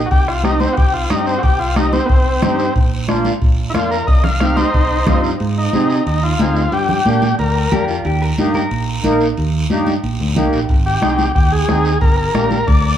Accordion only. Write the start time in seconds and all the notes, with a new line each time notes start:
0.43 C4 D#4 G4
1.10 C4 D#4 G4
1.77 C4 D#4 G4
2.42 C4 D#4 G4
3.08 A#3 D4 F4
3.74 A#3 D4 F4
4.40 C4 D#4 G4
5.07 C4 D#4 F4
5.73 C4 D#4 G#4
6.39 C4 D#4 G#4
7.06 A#3 D4 G4
7.72 A#3 D4 G4
8.38 A#3 D#4 G4
9.04 A#3 D#4 A#4
9.70 A#3 D#4 G4
10.36 A#3 D#4 G4
11.02 C4 D#4 G#4
11.68 C4 D#4 G#4
12.34 A#3 D4 G4